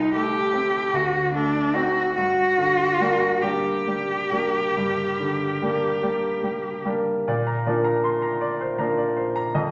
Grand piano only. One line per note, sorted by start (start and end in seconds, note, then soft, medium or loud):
0.00 0.90 C2 soft
0.15 0.77 A3 soft
0.54 0.89 C4 soft
0.93 2.13 D2 soft
1.35 2.00 A3 soft
1.76 2.13 C4 soft
1.76 2.13 D#4 soft
2.17 4.73 G2 soft
2.58 3.26 D3 soft
3.00 3.39 G3 soft
3.00 3.40 A#3 soft
3.00 3.40 D4 soft
3.43 3.84 G3 soft
3.43 3.84 A#3 soft
3.43 3.84 D4 soft
3.87 4.30 G3 soft
4.31 4.72 G3 soft
4.31 4.72 A#3 soft
4.31 4.73 D4 soft
4.77 7.24 G2 soft
5.20 5.86 D3 soft
5.62 5.99 G3 soft
5.62 5.99 A#3 soft
5.62 5.99 D4 soft
6.02 6.39 G3 soft
6.02 6.40 A#3 soft
6.02 6.40 D4 soft
6.43 6.84 G3 soft
6.85 7.23 G3 soft
6.85 7.24 A#3 soft
6.85 7.24 D4 soft
7.28 7.66 A#2 soft
7.28 7.59 D5 soft
7.47 7.78 A#5 soft
7.66 8.76 F3 soft
7.66 8.76 A#3 soft
7.66 8.76 D4 soft
7.66 7.97 D5 soft
7.84 8.15 A#5 soft
8.04 8.23 C6 soft
8.22 8.53 A#5 soft
8.41 8.72 D5 soft
8.61 8.80 C5 soft
8.78 9.50 F3 soft
8.78 9.50 A#3 soft
8.78 9.50 D4 soft
8.78 9.09 A#5 soft
8.97 9.28 D5 soft
9.16 9.36 C5 soft
9.36 9.55 A#5 soft
9.55 9.71 F2 soft
9.55 9.71 D#5 soft